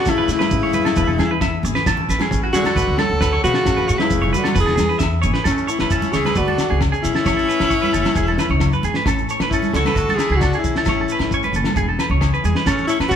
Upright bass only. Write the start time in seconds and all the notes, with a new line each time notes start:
0.07 A1
0.28 A2
0.51 A1
0.97 E1
1.07 E1
1.19 E2
1.41 E2
1.63 G#1
1.86 A1
2.09 A1
2.31 A1
2.76 D2
2.87 D2
3.10 D2
3.44 B2
3.66 A1
3.90 A2
4.11 F1
4.55 E1
4.67 E1
4.78 E2
5.01 E2
5.24 G#1
5.45 A1
5.81 A1
6.15 C#2
6.36 D2
6.71 C#2
7.05 B1
7.26 A1
7.60 A1
7.94 F#1
8.16 E1
8.50 C#2
8.83 E2
9.06 A1
9.40 A1
9.73 C#2
9.96 D2
10.30 C#2
10.64 B1
10.87 A1
11.19 A1
11.53 F#1
11.76 E1
12.10 C#2
12.44 E2
12.66 A1
13.00 A1